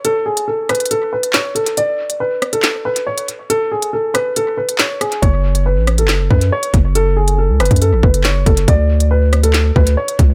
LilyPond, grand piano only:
\new Staff \with { instrumentName = "Grand piano" } { \time 4/4 \key fis \minor \tempo 4 = 139 a'8 gis'8 a'8 b'8 a'8 b'8 cis''8 a'8 | d''4 b'8. a'8. b'8 cis''8 r8 | a'8 gis'8 a'8 b'8 a'8 b'8 cis''8 gis'8 | cis''4 b'8. a'8. b'8 cis''8 r8 |
a'8 gis'8 a'8 b'8 a'8 b'8 cis''8 a'8 | d''4 b'8. a'8. b'8 cis''8 r8 | }